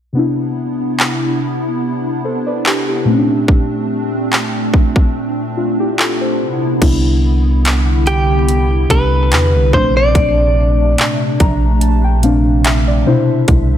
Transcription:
0.13 3.02 C3 medium
0.13 3.04 C3 medium
0.13 3.03 B3 medium
0.13 3.04 B3 medium
0.13 6.78 D4 medium
0.13 3.03 D4 medium
0.13 3.04 E4 medium
0.18 2.21 E4 medium
1.00 clap medium
2.24 2.46 A4 soft
2.24 2.45 C5 medium
2.47 2.65 B4 medium
2.47 2.64 D5 medium
2.66 2.87 G4 medium
2.66 2.87 B4 medium
2.66 clap loud
2.88 3.28 E4 medium
2.88 3.28 G4 medium
3.05 6.35 A#2 medium
3.05 6.37 A#2 medium
3.05 6.37 A3 medium
3.05 6.36 A3 medium
3.05 6.36 C4 medium
3.05 6.37 C4 medium
3.11 3.16 C#4 medium
3.17 5.57 D4 medium
3.48 kick medium
4.33 clap medium
4.74 kick medium
4.96 kick medium
5.57 5.79 D4 soft
5.57 5.78 F4 medium
5.80 5.98 E4 medium
5.80 5.98 G4 medium
5.99 6.20 F4 medium
5.99 6.20 A4 medium
5.99 clap loud
6.21 6.61 A4 medium
6.21 6.61 C5 medium
6.39 6.81 C3 medium
6.39 6.80 B3 medium
6.39 6.80 E4 medium
6.80 8.86 C2 loud
6.80 8.37 C3 medium
6.80 9.70 D3 medium
6.80 9.70 B3 medium
6.80 8.38 B3 medium
6.80 8.38 D4 medium
6.80 9.70 E4 medium
6.80 8.39 E4 medium
6.80 kick loud
6.80 closed hi-hat medium
6.80 crash medium
7.65 clap loud
7.65 closed hi-hat medium
8.07 8.91 G4 medium
8.07 closed hi-hat medium
8.49 closed hi-hat medium
8.89 9.33 C2 medium
8.89 9.68 C3 medium
8.89 9.68 B3 medium
8.89 9.69 D4 medium
8.89 9.69 G4 medium
8.89 9.74 B4 loud
8.89 kick medium
8.89 closed hi-hat medium
9.32 9.56 E2 medium
9.32 clap loud
9.32 closed hi-hat medium
9.54 9.73 C2 loud
9.72 10.13 A#1 loud
9.72 11.29 A#2 medium
9.72 13.04 C3 medium
9.72 11.30 A3 medium
9.72 13.04 A3 medium
9.72 11.30 C4 medium
9.72 13.04 D4 medium
9.72 11.31 D4 medium
9.72 9.96 C5 medium
9.72 kick medium
9.97 11.91 D5 medium
10.15 10.95 A#1 loud
10.15 kick loud
10.15 closed hi-hat medium
10.98 clap medium
10.98 closed hi-hat medium
11.40 13.03 A#1 loud
11.40 11.79 A#5 medium
11.40 kick medium
11.40 closed hi-hat medium
11.81 12.03 A5 medium
11.81 closed hi-hat medium
11.91 13.03 C5 medium
12.04 12.22 G5 medium
12.22 13.01 A#2 medium
12.22 13.01 A3 medium
12.22 13.02 C4 medium
12.22 13.02 D4 medium
12.22 12.62 F5 medium
12.22 closed hi-hat medium
12.65 12.86 E5 medium
12.65 clap loud
12.65 closed hi-hat medium
12.88 13.05 D5 medium
13.05 13.78 B2 medium
13.05 13.78 C3 medium
13.05 13.78 D3 medium
13.05 13.78 D4 medium
13.05 13.78 E4 loud
13.05 13.45 C5 medium
13.05 13.78 E5 medium
13.48 13.78 C2 loud
13.48 kick loud
13.48 closed hi-hat medium

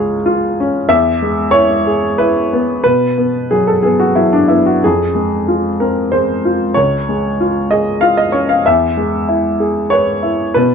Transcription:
0.00 0.85 C#2 medium
0.00 0.91 G#3 soft
0.00 0.13 F4 soft
0.00 0.45 G#4 soft
0.00 0.57 C#5 medium
0.26 0.76 F4 soft
0.60 0.91 C#4 soft
0.89 2.80 E2 medium
0.89 1.53 E5 loud
1.22 1.73 G#3 soft
1.51 2.04 E4 medium
1.51 2.17 C#5 loud
1.87 2.38 G#4 soft
2.18 2.71 E4 soft
2.18 2.82 B4 medium
2.53 2.85 B3 soft
2.84 4.79 B2 soft
2.84 3.50 B4 medium
3.18 3.70 B3 soft
3.51 4.04 F#3 soft
3.51 3.67 G#4 medium
3.67 3.83 A4 medium
3.83 4.36 B3 soft
3.83 3.99 G#4 medium
4.00 4.16 F#4 medium
4.15 4.69 F#3 soft
4.15 4.32 E4 medium
4.33 4.49 D4 medium
4.48 4.82 B3 soft
4.48 4.65 E4 medium
4.66 4.82 F#4 medium
4.84 6.73 F2 soft
4.84 5.81 G#4 medium
5.15 5.67 G#3 soft
5.48 6.00 F4 soft
5.80 6.32 C4 soft
5.80 6.12 A#4 medium
6.12 6.63 G#3 soft
6.12 6.75 C5 medium
6.45 6.76 F4 soft
6.74 8.61 C#2 soft
6.74 7.69 C#5 medium
7.09 7.58 G#3 soft
7.41 7.89 F4 soft
7.71 8.21 G#4 soft
7.71 8.02 D#5 medium
8.01 8.52 F4 soft
8.01 8.17 F5 medium
8.17 8.33 D#5 medium
8.32 8.65 C#4 soft
8.32 8.48 C#5 medium
8.49 8.64 F5 medium
8.66 10.54 E2 medium
8.66 9.93 E5 medium
8.97 9.47 G#3 soft
9.29 9.80 E4 soft
9.60 10.12 G#4 soft
9.90 10.44 B4 soft
9.90 10.55 C#5 medium
10.23 10.56 E4 soft
10.54 10.75 B2 medium
10.54 10.75 B4 medium

